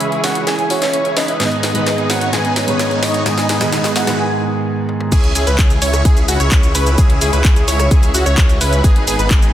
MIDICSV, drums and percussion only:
0, 0, Header, 1, 2, 480
1, 0, Start_track
1, 0, Tempo, 465116
1, 1445, Time_signature, 4, 2, 24, 8
1, 9835, End_track
2, 0, Start_track
2, 0, Title_t, "Drums"
2, 4, Note_on_c, 9, 42, 54
2, 108, Note_off_c, 9, 42, 0
2, 125, Note_on_c, 9, 42, 26
2, 228, Note_off_c, 9, 42, 0
2, 244, Note_on_c, 9, 38, 63
2, 244, Note_on_c, 9, 46, 105
2, 347, Note_off_c, 9, 38, 0
2, 347, Note_off_c, 9, 46, 0
2, 364, Note_on_c, 9, 42, 54
2, 468, Note_off_c, 9, 42, 0
2, 484, Note_on_c, 9, 38, 64
2, 484, Note_on_c, 9, 42, 50
2, 588, Note_off_c, 9, 38, 0
2, 588, Note_off_c, 9, 42, 0
2, 604, Note_on_c, 9, 42, 26
2, 708, Note_off_c, 9, 42, 0
2, 724, Note_on_c, 9, 46, 109
2, 827, Note_off_c, 9, 46, 0
2, 844, Note_on_c, 9, 38, 62
2, 844, Note_on_c, 9, 42, 55
2, 947, Note_off_c, 9, 38, 0
2, 947, Note_off_c, 9, 42, 0
2, 964, Note_on_c, 9, 42, 57
2, 1067, Note_off_c, 9, 42, 0
2, 1084, Note_on_c, 9, 42, 27
2, 1187, Note_off_c, 9, 42, 0
2, 1203, Note_on_c, 9, 38, 72
2, 1203, Note_on_c, 9, 46, 108
2, 1307, Note_off_c, 9, 38, 0
2, 1307, Note_off_c, 9, 46, 0
2, 1324, Note_on_c, 9, 42, 52
2, 1427, Note_off_c, 9, 42, 0
2, 1444, Note_on_c, 9, 38, 75
2, 1444, Note_on_c, 9, 42, 52
2, 1547, Note_off_c, 9, 38, 0
2, 1547, Note_off_c, 9, 42, 0
2, 1564, Note_on_c, 9, 42, 26
2, 1667, Note_off_c, 9, 42, 0
2, 1684, Note_on_c, 9, 38, 75
2, 1684, Note_on_c, 9, 46, 108
2, 1787, Note_off_c, 9, 38, 0
2, 1787, Note_off_c, 9, 46, 0
2, 1804, Note_on_c, 9, 42, 52
2, 1908, Note_off_c, 9, 42, 0
2, 1925, Note_on_c, 9, 38, 80
2, 1925, Note_on_c, 9, 42, 51
2, 2028, Note_off_c, 9, 38, 0
2, 2028, Note_off_c, 9, 42, 0
2, 2045, Note_on_c, 9, 42, 26
2, 2148, Note_off_c, 9, 42, 0
2, 2164, Note_on_c, 9, 38, 77
2, 2164, Note_on_c, 9, 46, 110
2, 2267, Note_off_c, 9, 38, 0
2, 2267, Note_off_c, 9, 46, 0
2, 2284, Note_on_c, 9, 42, 54
2, 2387, Note_off_c, 9, 42, 0
2, 2404, Note_on_c, 9, 38, 80
2, 2404, Note_on_c, 9, 42, 50
2, 2508, Note_off_c, 9, 38, 0
2, 2508, Note_off_c, 9, 42, 0
2, 2524, Note_on_c, 9, 42, 25
2, 2628, Note_off_c, 9, 42, 0
2, 2644, Note_on_c, 9, 38, 88
2, 2644, Note_on_c, 9, 46, 114
2, 2747, Note_off_c, 9, 38, 0
2, 2747, Note_off_c, 9, 46, 0
2, 2764, Note_on_c, 9, 42, 54
2, 2867, Note_off_c, 9, 42, 0
2, 2884, Note_on_c, 9, 38, 89
2, 2884, Note_on_c, 9, 42, 54
2, 2987, Note_off_c, 9, 38, 0
2, 2987, Note_off_c, 9, 42, 0
2, 3004, Note_on_c, 9, 42, 25
2, 3107, Note_off_c, 9, 42, 0
2, 3123, Note_on_c, 9, 38, 88
2, 3123, Note_on_c, 9, 46, 111
2, 3226, Note_off_c, 9, 38, 0
2, 3226, Note_off_c, 9, 46, 0
2, 3244, Note_on_c, 9, 42, 51
2, 3347, Note_off_c, 9, 42, 0
2, 3364, Note_on_c, 9, 38, 94
2, 3364, Note_on_c, 9, 42, 50
2, 3467, Note_off_c, 9, 38, 0
2, 3467, Note_off_c, 9, 42, 0
2, 3484, Note_on_c, 9, 38, 82
2, 3484, Note_on_c, 9, 42, 25
2, 3587, Note_off_c, 9, 38, 0
2, 3587, Note_off_c, 9, 42, 0
2, 3604, Note_on_c, 9, 38, 93
2, 3604, Note_on_c, 9, 46, 109
2, 3707, Note_off_c, 9, 38, 0
2, 3707, Note_off_c, 9, 46, 0
2, 3724, Note_on_c, 9, 38, 85
2, 3724, Note_on_c, 9, 42, 50
2, 3827, Note_off_c, 9, 38, 0
2, 3827, Note_off_c, 9, 42, 0
2, 3844, Note_on_c, 9, 38, 102
2, 3844, Note_on_c, 9, 42, 52
2, 3947, Note_off_c, 9, 38, 0
2, 3947, Note_off_c, 9, 42, 0
2, 3964, Note_on_c, 9, 38, 84
2, 3964, Note_on_c, 9, 42, 25
2, 4067, Note_off_c, 9, 38, 0
2, 4067, Note_off_c, 9, 42, 0
2, 4084, Note_on_c, 9, 38, 99
2, 4084, Note_on_c, 9, 46, 105
2, 4187, Note_off_c, 9, 38, 0
2, 4187, Note_off_c, 9, 46, 0
2, 4203, Note_on_c, 9, 38, 91
2, 4203, Note_on_c, 9, 42, 51
2, 4307, Note_off_c, 9, 38, 0
2, 4307, Note_off_c, 9, 42, 0
2, 5045, Note_on_c, 9, 48, 61
2, 5148, Note_off_c, 9, 48, 0
2, 5165, Note_on_c, 9, 47, 73
2, 5268, Note_off_c, 9, 47, 0
2, 5285, Note_on_c, 9, 36, 114
2, 5285, Note_on_c, 9, 42, 103
2, 5285, Note_on_c, 9, 49, 101
2, 5286, Note_on_c, 9, 69, 46
2, 5388, Note_off_c, 9, 36, 0
2, 5388, Note_off_c, 9, 42, 0
2, 5388, Note_off_c, 9, 49, 0
2, 5389, Note_off_c, 9, 69, 0
2, 5405, Note_on_c, 9, 42, 42
2, 5508, Note_off_c, 9, 42, 0
2, 5525, Note_on_c, 9, 46, 106
2, 5525, Note_on_c, 9, 69, 82
2, 5628, Note_off_c, 9, 46, 0
2, 5629, Note_off_c, 9, 69, 0
2, 5645, Note_on_c, 9, 42, 42
2, 5645, Note_on_c, 9, 69, 35
2, 5748, Note_off_c, 9, 42, 0
2, 5749, Note_off_c, 9, 69, 0
2, 5765, Note_on_c, 9, 36, 117
2, 5765, Note_on_c, 9, 39, 127
2, 5765, Note_on_c, 9, 42, 102
2, 5765, Note_on_c, 9, 69, 48
2, 5868, Note_off_c, 9, 36, 0
2, 5868, Note_off_c, 9, 39, 0
2, 5868, Note_off_c, 9, 42, 0
2, 5868, Note_off_c, 9, 69, 0
2, 5885, Note_on_c, 9, 42, 40
2, 5886, Note_on_c, 9, 69, 31
2, 5988, Note_off_c, 9, 42, 0
2, 5989, Note_off_c, 9, 69, 0
2, 6004, Note_on_c, 9, 46, 106
2, 6005, Note_on_c, 9, 69, 79
2, 6108, Note_off_c, 9, 46, 0
2, 6108, Note_off_c, 9, 69, 0
2, 6125, Note_on_c, 9, 37, 65
2, 6125, Note_on_c, 9, 42, 43
2, 6125, Note_on_c, 9, 69, 35
2, 6228, Note_off_c, 9, 37, 0
2, 6228, Note_off_c, 9, 42, 0
2, 6229, Note_off_c, 9, 69, 0
2, 6245, Note_on_c, 9, 36, 125
2, 6245, Note_on_c, 9, 42, 98
2, 6246, Note_on_c, 9, 69, 44
2, 6348, Note_off_c, 9, 36, 0
2, 6348, Note_off_c, 9, 42, 0
2, 6349, Note_off_c, 9, 69, 0
2, 6365, Note_on_c, 9, 42, 41
2, 6365, Note_on_c, 9, 69, 32
2, 6468, Note_off_c, 9, 42, 0
2, 6469, Note_off_c, 9, 69, 0
2, 6485, Note_on_c, 9, 46, 107
2, 6485, Note_on_c, 9, 69, 81
2, 6588, Note_off_c, 9, 46, 0
2, 6589, Note_off_c, 9, 69, 0
2, 6605, Note_on_c, 9, 42, 43
2, 6605, Note_on_c, 9, 69, 35
2, 6708, Note_off_c, 9, 42, 0
2, 6709, Note_off_c, 9, 69, 0
2, 6725, Note_on_c, 9, 36, 117
2, 6725, Note_on_c, 9, 39, 127
2, 6725, Note_on_c, 9, 42, 103
2, 6725, Note_on_c, 9, 69, 46
2, 6828, Note_off_c, 9, 36, 0
2, 6828, Note_off_c, 9, 39, 0
2, 6828, Note_off_c, 9, 42, 0
2, 6828, Note_off_c, 9, 69, 0
2, 6845, Note_on_c, 9, 42, 42
2, 6845, Note_on_c, 9, 69, 32
2, 6948, Note_off_c, 9, 42, 0
2, 6948, Note_off_c, 9, 69, 0
2, 6964, Note_on_c, 9, 46, 104
2, 6965, Note_on_c, 9, 69, 82
2, 7068, Note_off_c, 9, 46, 0
2, 7068, Note_off_c, 9, 69, 0
2, 7085, Note_on_c, 9, 42, 41
2, 7085, Note_on_c, 9, 69, 35
2, 7188, Note_off_c, 9, 42, 0
2, 7189, Note_off_c, 9, 69, 0
2, 7204, Note_on_c, 9, 42, 96
2, 7205, Note_on_c, 9, 36, 118
2, 7205, Note_on_c, 9, 69, 45
2, 7308, Note_off_c, 9, 36, 0
2, 7308, Note_off_c, 9, 42, 0
2, 7308, Note_off_c, 9, 69, 0
2, 7324, Note_on_c, 9, 42, 42
2, 7428, Note_off_c, 9, 42, 0
2, 7444, Note_on_c, 9, 46, 113
2, 7445, Note_on_c, 9, 69, 76
2, 7547, Note_off_c, 9, 46, 0
2, 7548, Note_off_c, 9, 69, 0
2, 7564, Note_on_c, 9, 42, 40
2, 7565, Note_on_c, 9, 69, 33
2, 7667, Note_off_c, 9, 42, 0
2, 7668, Note_off_c, 9, 69, 0
2, 7684, Note_on_c, 9, 39, 127
2, 7684, Note_on_c, 9, 42, 96
2, 7685, Note_on_c, 9, 36, 124
2, 7685, Note_on_c, 9, 69, 43
2, 7787, Note_off_c, 9, 39, 0
2, 7787, Note_off_c, 9, 42, 0
2, 7788, Note_off_c, 9, 36, 0
2, 7788, Note_off_c, 9, 69, 0
2, 7805, Note_on_c, 9, 42, 41
2, 7805, Note_on_c, 9, 69, 31
2, 7908, Note_off_c, 9, 42, 0
2, 7908, Note_off_c, 9, 69, 0
2, 7925, Note_on_c, 9, 46, 107
2, 7925, Note_on_c, 9, 69, 76
2, 8028, Note_off_c, 9, 46, 0
2, 8028, Note_off_c, 9, 69, 0
2, 8045, Note_on_c, 9, 37, 67
2, 8045, Note_on_c, 9, 42, 43
2, 8045, Note_on_c, 9, 69, 34
2, 8148, Note_off_c, 9, 37, 0
2, 8148, Note_off_c, 9, 42, 0
2, 8149, Note_off_c, 9, 69, 0
2, 8165, Note_on_c, 9, 36, 123
2, 8165, Note_on_c, 9, 42, 90
2, 8165, Note_on_c, 9, 69, 43
2, 8268, Note_off_c, 9, 36, 0
2, 8268, Note_off_c, 9, 42, 0
2, 8269, Note_off_c, 9, 69, 0
2, 8286, Note_on_c, 9, 42, 41
2, 8286, Note_on_c, 9, 69, 31
2, 8389, Note_off_c, 9, 42, 0
2, 8389, Note_off_c, 9, 69, 0
2, 8406, Note_on_c, 9, 46, 109
2, 8406, Note_on_c, 9, 69, 81
2, 8509, Note_off_c, 9, 46, 0
2, 8509, Note_off_c, 9, 69, 0
2, 8526, Note_on_c, 9, 42, 41
2, 8526, Note_on_c, 9, 69, 35
2, 8629, Note_off_c, 9, 42, 0
2, 8629, Note_off_c, 9, 69, 0
2, 8645, Note_on_c, 9, 36, 122
2, 8646, Note_on_c, 9, 39, 127
2, 8646, Note_on_c, 9, 42, 98
2, 8646, Note_on_c, 9, 69, 44
2, 8748, Note_off_c, 9, 36, 0
2, 8749, Note_off_c, 9, 39, 0
2, 8749, Note_off_c, 9, 42, 0
2, 8749, Note_off_c, 9, 69, 0
2, 8766, Note_on_c, 9, 42, 40
2, 8766, Note_on_c, 9, 69, 32
2, 8869, Note_off_c, 9, 42, 0
2, 8869, Note_off_c, 9, 69, 0
2, 8885, Note_on_c, 9, 46, 111
2, 8886, Note_on_c, 9, 69, 77
2, 8988, Note_off_c, 9, 46, 0
2, 8989, Note_off_c, 9, 69, 0
2, 9005, Note_on_c, 9, 42, 40
2, 9006, Note_on_c, 9, 69, 33
2, 9109, Note_off_c, 9, 42, 0
2, 9109, Note_off_c, 9, 69, 0
2, 9124, Note_on_c, 9, 36, 125
2, 9125, Note_on_c, 9, 42, 92
2, 9126, Note_on_c, 9, 69, 44
2, 9228, Note_off_c, 9, 36, 0
2, 9228, Note_off_c, 9, 42, 0
2, 9229, Note_off_c, 9, 69, 0
2, 9245, Note_on_c, 9, 42, 40
2, 9349, Note_off_c, 9, 42, 0
2, 9366, Note_on_c, 9, 46, 116
2, 9366, Note_on_c, 9, 69, 77
2, 9469, Note_off_c, 9, 46, 0
2, 9469, Note_off_c, 9, 69, 0
2, 9486, Note_on_c, 9, 42, 39
2, 9486, Note_on_c, 9, 69, 33
2, 9589, Note_off_c, 9, 42, 0
2, 9590, Note_off_c, 9, 69, 0
2, 9604, Note_on_c, 9, 36, 124
2, 9605, Note_on_c, 9, 39, 124
2, 9605, Note_on_c, 9, 42, 90
2, 9606, Note_on_c, 9, 69, 44
2, 9708, Note_off_c, 9, 36, 0
2, 9709, Note_off_c, 9, 39, 0
2, 9709, Note_off_c, 9, 42, 0
2, 9709, Note_off_c, 9, 69, 0
2, 9725, Note_on_c, 9, 42, 38
2, 9726, Note_on_c, 9, 69, 31
2, 9829, Note_off_c, 9, 42, 0
2, 9829, Note_off_c, 9, 69, 0
2, 9835, End_track
0, 0, End_of_file